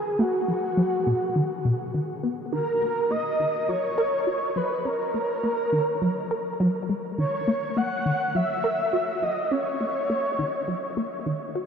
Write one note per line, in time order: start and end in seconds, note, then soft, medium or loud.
0.00 0.21 G#4 loud
0.19 0.31 A#3 medium
0.19 1.94 F#4 loud
0.48 0.68 F#3 medium
0.77 0.97 F#3 medium
1.06 1.26 B2 medium
1.36 1.55 D#3 medium
1.65 1.85 B2 medium
1.94 2.22 D#3 medium
2.23 2.43 B3 medium
2.52 2.72 D#3 medium
2.52 3.12 A#4 loud
2.82 3.01 A#3 medium
3.11 3.30 A#3 medium
3.11 3.70 D#5 loud
3.40 3.59 D#3 medium
3.69 3.89 F#3 medium
3.69 4.58 C#5 loud
3.98 4.18 A#4 loud
4.27 4.55 F#4 medium
4.56 4.68 F#3 medium
4.56 4.87 B4 medium
4.85 4.97 C#4 medium
4.85 6.60 A#4 loud
5.14 5.34 A#3 medium
5.43 5.63 A#3 medium
5.72 5.92 D#3 medium
6.02 6.22 F#3 medium
6.31 6.51 A#4 loud
6.60 6.80 F#3 medium
6.89 7.01 G#3 medium
7.18 7.38 D#3 medium
7.18 7.78 C#5 loud
7.47 7.67 A#3 medium
7.77 7.96 A#3 medium
7.77 8.37 F#5 loud
8.06 8.25 D#3 medium
8.35 8.55 F#3 medium
8.35 9.24 E5 loud
8.64 8.84 A#4 loud
8.93 9.21 F#4 medium
9.22 9.34 F#3 medium
9.22 9.53 D#5 medium
9.51 9.63 C#4 medium
9.51 11.26 C#5 loud
9.81 10.00 A#3 medium
10.10 10.29 A#3 medium
10.39 10.59 D#3 medium
10.68 10.88 F#3 medium
10.97 11.17 A#3 medium
11.26 11.38 D#3 medium
11.55 11.66 F#4 medium